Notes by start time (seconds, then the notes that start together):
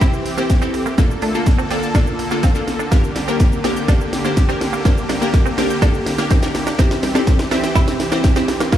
Already playing: E3 C4 G4
0.01 C3 C4 E4 G4 C5, kick, snare, closed hi-hat, shaker
0.13 muted clean electric guitar stroke, shaker
0.26 open hi-hat, shaker
0.37 A#3 C4 E4 G4 C5, shaker
0.50 G4, kick, snare, closed hi-hat, shaker
0.62 C4 E4 G4 A4, shaker
0.74 muted clean electric guitar stroke, open hi-hat, shaker
0.86 A#3, shaker
0.98 A#2 D3 A#3 D4 F4 A4, kick, snare, closed hi-hat, shaker
1.11 shaker
1.22 A3 D4, open hi-hat, shaker
1.34 A#3 D4 F4 A4, muted clean electric guitar stroke, shaker
1.46 muted clean electric guitar stroke, kick, snare, closed hi-hat, shaker
1.59 C4, shaker
1.71 A#3 C4 D4 F4 A4 D5, open hi-hat, shaker
1.83 A5, shaker
1.95 A#2 A#3 D4 F4 A4, kick, snare, closed hi-hat, shaker
2.07 shaker
2.19 muted clean electric guitar stroke, open hi-hat, shaker
2.31 A#3 D4 F4 A4, shaker
2.43 C4 F4, kick, snare, closed hi-hat, shaker
2.55 A#3 D4 F4 A4, shaker
2.67 muted clean electric guitar stroke, snare, open hi-hat, shaker
2.79 D4, shaker
2.91 G2 A#3 D4 G4 A#4, kick, snare, closed hi-hat, shaker
3.04 shaker
3.16 G3, muted clean electric guitar stroke, snare, open hi-hat, shaker
3.28 A#3 C4 D4 G4 A#4, shaker
3.40 kick, snare, closed hi-hat, shaker
3.52 shaker
3.64 A#3 C4 D4 G4 A#4 D6, snare, open hi-hat, shaker
3.76 G6, shaker
3.88 G2 A#3 D4 G4 A4, kick, snare, closed hi-hat, shaker
4.00 muted clean electric guitar stroke, shaker
4.13 snare, open hi-hat, shaker
4.25 A#3 D4 G4 C5, shaker
4.37 G4, kick, snare, closed hi-hat, shaker
4.49 A#3 C4 D4 G4 A#4, shaker
4.61 muted clean electric guitar stroke, snare, open hi-hat, shaker
4.73 A#3, shaker
4.85 G2 A#3 D4 G4 C5, kick, snare, closed hi-hat, shaker
4.98 shaker
5.09 G3 D4, snare, open hi-hat, shaker
5.21 A#3 D4 G4 A#4, muted clean electric guitar stroke, shaker
5.34 muted clean electric guitar stroke, kick, snare, closed hi-hat, shaker
5.46 C4, shaker
5.58 A#3 C4 D4 G4 A#4 D6, snare, open hi-hat, shaker
5.70 G6, shaker
5.82 G2 A#3 D4 G4 A4, kick, snare, closed hi-hat, shaker
5.94 shaker
6.06 muted clean electric guitar stroke, snare, open hi-hat, shaker
6.18 A#3 D4 G4 A#4, snare, shaker
6.30 C4 G4, kick, snare, closed hi-hat, shaker
6.42 A#3 D4 G4 A#4, snare, shaker
6.55 muted clean electric guitar stroke, snare, open hi-hat, shaker
6.67 D4, snare, shaker
6.78 C3 E3 C4 E4 G4 C5, kick, snare, closed hi-hat, shaker
6.91 snare, shaker
7.03 G3, muted clean electric guitar stroke, snare, open hi-hat, shaker
7.15 C4 D4 E4 G4 A4, snare, shaker
7.27 kick, snare, closed hi-hat, shaker
7.39 snare, shaker
7.51 C4 D4 E4 G4 C5 E5, snare, open hi-hat, shaker
7.64 G5, snare, shaker
7.75 C3 C4 E4 G4 C5, kick, snare, closed hi-hat, shaker
7.88 muted clean electric guitar stroke, snare, shaker
8.00 snare, open hi-hat, shaker
8.12 A#3 C4 E4 G4 C5, snare, shaker
8.24 G4, kick, snare, closed hi-hat, shaker
8.36 C4 E4 G4 C5, snare, shaker
8.48 muted clean electric guitar stroke, snare, open hi-hat, shaker
8.60 A#3, snare, shaker
8.72 A#2 D3 A#3 D4 F4 A4, kick, snare, closed hi-hat, shaker